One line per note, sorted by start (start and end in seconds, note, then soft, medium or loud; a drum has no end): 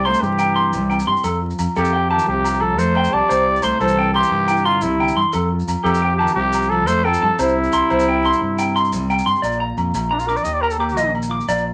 0.00 0.13 C2 loud
0.00 0.22 C3 medium
0.00 0.72 G3 medium
0.00 0.90 C4 medium
0.00 0.39 E4 medium
0.05 0.26 A3 medium
0.05 0.13 F4 medium
0.05 0.23 C5 medium
0.05 0.20 C6 medium
0.05 low agogo medium
0.13 1.07 G4 medium
0.13 maracas medium
0.22 0.75 G2 medium
0.22 1.23 C3 medium
0.22 1.09 E3 medium
0.22 1.07 G4 medium
0.22 maracas soft
0.39 1.23 E4 medium
0.39 0.54 G5 medium
0.39 low agogo medium
0.39 maracas medium
0.56 0.71 C6 medium
0.56 low agogo medium
0.72 1.01 C2 medium
0.72 1.27 G3 medium
0.72 maracas loud
0.90 2.94 C4 medium
0.90 1.05 G5 medium
0.90 low agogo medium
0.90 maracas soft
0.99 maracas medium
1.07 1.15 G2 medium
1.07 1.27 G4 medium
1.07 1.22 C6 medium
1.17 maracas soft
1.24 2.26 F2 medium
1.24 1.52 F2 medium
1.24 1.39 A4 medium
1.24 low agogo medium
1.24 maracas medium
1.42 2.10 F4 medium
1.50 maracas soft
1.59 1.66 F2 medium
1.59 low agogo medium
1.59 maracas medium
1.76 2.18 F2 loud
1.76 2.77 F3 medium
1.76 2.09 G4 medium
1.76 1.91 A4 medium
1.76 low agogo medium
1.76 maracas soft
1.80 2.10 C3 medium
1.85 maracas medium
1.93 2.08 G5 medium
2.10 2.28 D#3 medium
2.10 2.45 F4 medium
2.10 2.26 G4 medium
2.10 2.25 A5 medium
2.10 low agogo medium
2.19 maracas medium
2.27 2.79 C2 medium
2.27 3.30 F2 medium
2.27 2.64 C3 medium
2.27 2.62 G4 medium
2.44 3.28 F4 medium
2.44 low agogo medium
2.44 maracas medium
2.54 maracas soft
2.60 2.80 F3 medium
2.60 2.80 A4 medium
2.60 low agogo medium
2.78 3.06 F2 medium
2.78 3.27 F3 medium
2.78 3.14 A3 medium
2.78 2.93 A4 medium
2.78 3.15 C5 medium
2.78 maracas loud
2.95 3.99 C4 medium
2.95 3.11 G5 medium
2.95 low agogo medium
3.04 maracas medium
3.12 3.20 C2 medium
3.12 3.65 G3 medium
3.12 3.28 A4 medium
3.12 3.64 D5 loud
3.12 3.27 A5 medium
3.28 3.58 C2 medium
3.28 4.31 C3 medium
3.28 3.44 C5 medium
3.28 low agogo medium
3.28 maracas medium
3.47 4.14 E4 medium
3.56 maracas soft
3.62 3.71 C2 medium
3.62 3.81 A3 medium
3.62 3.79 C5 loud
3.62 3.79 C6 medium
3.62 low agogo medium
3.62 maracas medium
3.80 4.22 C2 loud
3.80 4.13 E3 medium
3.80 5.16 G3 medium
3.80 4.12 A4 loud
3.80 3.95 C5 medium
3.80 low agogo medium
3.80 maracas soft
3.88 maracas medium
3.98 6.04 C4 medium
3.98 4.13 G5 medium
4.14 4.69 E3 medium
4.14 4.48 E4 medium
4.14 4.67 G4 loud
4.14 4.30 C6 medium
4.14 low agogo medium
4.23 maracas medium
4.31 4.83 G2 medium
4.31 4.81 C3 medium
4.48 5.32 E4 medium
4.48 4.63 G5 medium
4.48 low agogo medium
4.48 maracas medium
4.57 maracas soft
4.65 4.87 D3 medium
4.65 4.84 F4 medium
4.65 4.80 C6 medium
4.65 low agogo medium
4.81 5.10 C2 medium
4.81 4.99 C3 medium
4.81 5.21 E4 medium
4.81 maracas medium
4.85 5.22 C3 medium
4.99 5.17 D3 medium
4.99 5.15 G5 medium
4.99 low agogo medium
5.08 maracas medium
5.16 5.23 G2 medium
5.16 5.34 E3 medium
5.16 5.31 C6 medium
5.33 6.36 F2 medium
5.33 5.62 F2 medium
5.33 5.48 A4 medium
5.33 low agogo medium
5.33 maracas medium
5.52 6.19 F4 medium
5.60 maracas soft
5.67 5.75 F2 medium
5.67 low agogo medium
5.67 maracas medium
5.84 6.26 F2 loud
5.84 6.17 C3 medium
5.84 6.87 F3 medium
5.84 6.16 G4 loud
5.84 5.99 A4 medium
5.84 low agogo medium
5.84 maracas soft
5.94 maracas medium
6.02 7.05 C4 medium
6.02 6.17 G5 medium
6.17 6.35 D#3 medium
6.17 6.52 F4 medium
6.17 6.34 G4 medium
6.17 6.34 A5 medium
6.17 low agogo medium
6.28 maracas medium
6.35 6.87 C2 medium
6.35 6.72 C3 medium
6.35 6.71 G4 loud
6.35 muted clean electric guitar stroke medium
6.53 7.22 F4 medium
6.53 low agogo medium
6.53 maracas medium
6.62 maracas soft
6.70 6.88 F3 medium
6.70 6.88 A4 medium
6.70 low agogo medium
6.87 7.15 F2 loud
6.87 7.07 A3 medium
6.87 7.02 A4 medium
6.87 7.06 C5 loud
6.87 muted clean electric guitar stroke medium
6.87 maracas loud
7.05 7.39 F3 medium
7.05 7.37 C4 medium
7.05 7.39 A4 loud
7.05 7.19 G5 medium
7.05 low agogo medium
7.14 maracas medium
7.22 7.29 G2 medium
7.22 7.38 F4 medium
7.22 7.37 A5 medium
7.38 7.66 C2 medium
7.38 8.39 C3 medium
7.38 9.06 C3 medium
7.38 7.90 G3 medium
7.38 7.56 C4 medium
7.38 9.06 E4 medium
7.38 7.54 C5 medium
7.38 low agogo medium
7.38 maracas loud
7.58 8.07 C4 medium
7.64 maracas soft
7.72 7.80 C2 medium
7.72 7.88 C6 medium
7.72 low agogo medium
7.72 maracas medium
7.90 8.32 C2 medium
7.90 8.92 G3 medium
7.90 8.05 C5 medium
7.90 low agogo medium
7.90 maracas soft
8.00 maracas medium
8.08 8.24 C4 medium
8.08 8.23 G5 medium
8.25 8.58 C4 medium
8.25 8.39 C6 medium
8.25 low agogo medium
8.25 maracas soft
8.33 maracas medium
8.40 8.94 G2 medium
8.40 9.41 C3 medium
8.59 9.09 C4 medium
8.59 8.73 G5 medium
8.59 low agogo medium
8.59 maracas loud
8.76 8.90 C6 medium
8.76 low agogo medium
8.76 maracas soft
8.85 maracas soft
8.92 9.20 C2 medium
8.92 9.42 G3 medium
8.92 maracas loud
9.10 9.42 C4 medium
9.10 9.24 G5 medium
9.10 low agogo medium
9.10 maracas soft
9.18 maracas medium
9.26 9.33 G2 medium
9.26 9.41 G4 medium
9.26 9.41 C6 medium
9.26 maracas soft
9.36 maracas soft
9.42 9.71 A#1 medium
9.42 10.12 A#2 medium
9.42 10.45 F4 medium
9.42 9.57 D5 medium
9.42 low agogo medium
9.42 maracas medium
9.52 maracas soft
9.60 9.75 A#5 medium
9.77 9.91 F2 medium
9.77 10.44 F3 medium
9.77 low agogo medium
9.77 maracas soft
9.94 10.36 A#1 loud
9.94 low agogo medium
9.94 maracas medium
10.10 10.45 F2 medium
10.10 10.21 D4 medium
10.10 10.26 A#5 medium
10.19 10.29 F4 medium
10.19 maracas medium
10.27 10.44 D4 medium
10.27 10.38 A#4 medium
10.27 10.43 D6 medium
10.27 low agogo medium
10.27 maracas soft
10.37 10.45 D5 medium
10.37 maracas soft
10.44 10.98 D#2 medium
10.44 11.48 D#3 medium
10.44 11.29 G4 medium
10.44 10.55 D#5 medium
10.44 maracas medium
10.53 10.63 D5 medium
10.61 10.73 A#4 medium
10.61 10.78 A#5 medium
10.61 low agogo medium
10.70 10.79 A4 medium
10.70 maracas medium
10.78 11.46 A#3 medium
10.78 11.12 G4 medium
10.78 10.95 D6 medium
10.78 low agogo medium
10.89 maracas soft
10.97 11.39 A#1 medium
10.97 11.12 D#5 medium
10.97 maracas medium
11.13 11.48 A#2 medium
11.13 low agogo medium
11.22 maracas medium
11.29 11.39 F4 medium
11.29 11.46 D6 medium
11.39 11.48 G4 medium
11.39 maracas soft
11.48 11.74 A#1 medium
11.48 11.74 A#2 medium
11.48 11.74 F4 medium
11.48 11.63 D5 medium
11.48 low agogo medium
11.48 maracas medium
11.58 maracas soft